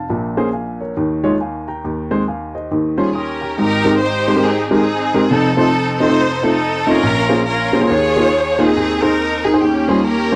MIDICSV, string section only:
0, 0, Header, 1, 2, 480
1, 0, Start_track
1, 0, Key_signature, -4, "major"
1, 0, Tempo, 432588
1, 114, Time_signature, 4, 2, 24, 8
1, 11492, End_track
2, 0, Start_track
2, 0, Title_t, "String section"
2, 0, Program_c, 0, 48
2, 3308, Note_on_c, 0, 68, 67
2, 3481, Note_off_c, 0, 68, 0
2, 3488, Note_on_c, 0, 70, 78
2, 3490, Note_on_c, 0, 61, 59
2, 3494, Note_on_c, 0, 67, 58
2, 3939, Note_off_c, 0, 61, 0
2, 3941, Note_off_c, 0, 67, 0
2, 3962, Note_off_c, 0, 70, 0
2, 3975, Note_on_c, 0, 70, 113
2, 3981, Note_on_c, 0, 63, 77
2, 3984, Note_on_c, 0, 67, 85
2, 4421, Note_off_c, 0, 70, 0
2, 4454, Note_off_c, 0, 63, 0
2, 4457, Note_off_c, 0, 67, 0
2, 4460, Note_on_c, 0, 72, 105
2, 4467, Note_on_c, 0, 63, 75
2, 4470, Note_on_c, 0, 67, 77
2, 4937, Note_off_c, 0, 63, 0
2, 4937, Note_off_c, 0, 72, 0
2, 4939, Note_on_c, 0, 68, 94
2, 4950, Note_on_c, 0, 60, 68
2, 4950, Note_on_c, 0, 63, 70
2, 5221, Note_off_c, 0, 68, 0
2, 5227, Note_off_c, 0, 60, 0
2, 5228, Note_off_c, 0, 63, 0
2, 5234, Note_on_c, 0, 68, 95
2, 5241, Note_on_c, 0, 60, 71
2, 5242, Note_on_c, 0, 63, 74
2, 5377, Note_off_c, 0, 67, 0
2, 5850, Note_off_c, 0, 68, 0
2, 5854, Note_off_c, 0, 60, 0
2, 5854, Note_off_c, 0, 63, 0
2, 5888, Note_on_c, 0, 69, 105
2, 5890, Note_on_c, 0, 60, 82
2, 5891, Note_on_c, 0, 63, 73
2, 6171, Note_off_c, 0, 69, 0
2, 6176, Note_off_c, 0, 63, 0
2, 6179, Note_off_c, 0, 60, 0
2, 6184, Note_on_c, 0, 69, 107
2, 6190, Note_on_c, 0, 63, 73
2, 6193, Note_on_c, 0, 60, 75
2, 6629, Note_off_c, 0, 69, 0
2, 6662, Note_off_c, 0, 63, 0
2, 6668, Note_on_c, 0, 72, 116
2, 6673, Note_on_c, 0, 69, 83
2, 6676, Note_on_c, 0, 63, 81
2, 7101, Note_off_c, 0, 60, 0
2, 7129, Note_off_c, 0, 69, 0
2, 7137, Note_off_c, 0, 63, 0
2, 7143, Note_on_c, 0, 69, 107
2, 7144, Note_off_c, 0, 72, 0
2, 7150, Note_on_c, 0, 63, 84
2, 7151, Note_on_c, 0, 60, 75
2, 7616, Note_on_c, 0, 70, 127
2, 7621, Note_off_c, 0, 69, 0
2, 7621, Note_on_c, 0, 61, 100
2, 7626, Note_on_c, 0, 65, 87
2, 7765, Note_off_c, 0, 60, 0
2, 7765, Note_off_c, 0, 63, 0
2, 8274, Note_off_c, 0, 70, 0
2, 8279, Note_off_c, 0, 61, 0
2, 8282, Note_off_c, 0, 65, 0
2, 8287, Note_on_c, 0, 70, 105
2, 8293, Note_on_c, 0, 61, 78
2, 8295, Note_on_c, 0, 65, 82
2, 8730, Note_off_c, 0, 70, 0
2, 8733, Note_off_c, 0, 61, 0
2, 8734, Note_off_c, 0, 65, 0
2, 8757, Note_on_c, 0, 73, 116
2, 8761, Note_on_c, 0, 65, 82
2, 8763, Note_on_c, 0, 68, 94
2, 9524, Note_off_c, 0, 68, 0
2, 9531, Note_off_c, 0, 73, 0
2, 9537, Note_on_c, 0, 68, 117
2, 9541, Note_on_c, 0, 60, 80
2, 9541, Note_on_c, 0, 63, 81
2, 9674, Note_off_c, 0, 65, 0
2, 10002, Note_off_c, 0, 63, 0
2, 10014, Note_off_c, 0, 68, 0
2, 10016, Note_on_c, 0, 63, 80
2, 10016, Note_on_c, 0, 70, 109
2, 10450, Note_off_c, 0, 60, 0
2, 10490, Note_on_c, 0, 68, 92
2, 10492, Note_off_c, 0, 70, 0
2, 10633, Note_off_c, 0, 63, 0
2, 10675, Note_off_c, 0, 68, 0
2, 10680, Note_on_c, 0, 67, 88
2, 10683, Note_on_c, 0, 58, 69
2, 10684, Note_on_c, 0, 61, 69
2, 10962, Note_on_c, 0, 68, 86
2, 10971, Note_off_c, 0, 67, 0
2, 11149, Note_off_c, 0, 61, 0
2, 11151, Note_off_c, 0, 68, 0
2, 11155, Note_on_c, 0, 70, 96
2, 11160, Note_on_c, 0, 67, 78
2, 11162, Note_on_c, 0, 61, 74
2, 11492, Note_off_c, 0, 58, 0
2, 11492, Note_off_c, 0, 61, 0
2, 11492, Note_off_c, 0, 67, 0
2, 11492, Note_off_c, 0, 70, 0
2, 11492, End_track
0, 0, End_of_file